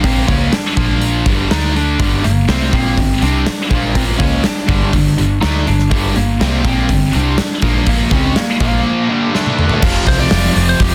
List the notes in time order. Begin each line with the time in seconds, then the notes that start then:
Already playing: A#1 A#2 F3 A#3
0.04 C4, kick, open hi-hat
0.28 C#2 C#3 G#3 A#3 C#4, kick, open hi-hat
0.53 D4, muted distorted electric guitar stroke, snare, open hi-hat
0.77 A#1 A#2 F3 A#3, kick, open hi-hat
1.02 open hi-hat
1.26 G1 G2 D3 G3, kick, open hi-hat
1.51 D2 D3 A3 D4 D#4, snare, open hi-hat
1.76 D4, open hi-hat
2.00 G1 G2 D3 G3, kick, open hi-hat
2.24 G1 G2 D3 A#3, snare, open hi-hat
2.48 C2 C3 G3 C4, snare, open hi-hat
2.58 A3
2.72 A#1 A#2 F3 A#3 C4, kick, open hi-hat
2.96 G1 G2 D3, kick, open hi-hat
3.22 C2 C3 G3 C4 D4, open hi-hat
3.46 muted overdriven electric guitar stroke, muted distorted electric guitar stroke, snare, open hi-hat
3.71 A#1 A#2 F3 A#3, kick, open hi-hat
3.95 C4, kick, open hi-hat
4.17 C#2 C#3 G#3 A#3 C#4, kick, open hi-hat
4.43 D4, muted overdriven electric guitar stroke, muted distorted electric guitar stroke, muted picked electric bass stroke, snare, open hi-hat
4.68 G1 G2 D3 G3, kick, open hi-hat
4.93 G1 G2 D3, kick, open hi-hat
5.18 G1 G2 D3, open hi-hat
5.41 D2 D3 A3 D4 D#4, snare, open hi-hat
5.67 G1 G2 D3 D4, open hi-hat
5.79 snare
5.91 G1 G2 D3 G3, kick, open hi-hat
6.16 G1 G2 D3 A#3, open hi-hat
6.41 C2 C3 G3 C4, snare, open hi-hat
6.62 A#1 A#2 C4, kick, open hi-hat
6.66 A#2 F3 A#3
6.89 G1 G2 D3, kick, open hi-hat
7.13 C2 C3 G3 C4 D4, open hi-hat
7.37 muted overdriven electric guitar stroke, muted distorted electric guitar stroke, snare, open hi-hat
7.62 A#1 A#2 F3 A#3, kick, open hi-hat
7.86 A#3, kick, open hi-hat
8.11 C#2 C#3 G#3 C4 C#4, kick, snare, open hi-hat
8.36 A#3, muted overdriven electric guitar stroke, muted picked electric bass stroke, muted distorted electric guitar stroke, snare, open hi-hat
8.60 A#1 A#2 F3 A#3, kick, open hi-hat
9.10 G2 D3 G3
9.34 D3 A3 D4, snare
9.46 high tom
9.59 mid tom
9.69 floor tom
9.82 F1 F2 C3 F3, kick, crash
10.06 C2 C5, kick, open hi-hat
10.19 D5
10.31 F1, snare, open hi-hat
10.56 F1, open hi-hat
10.69 C5
10.80 F1 G4, kick, open hi-hat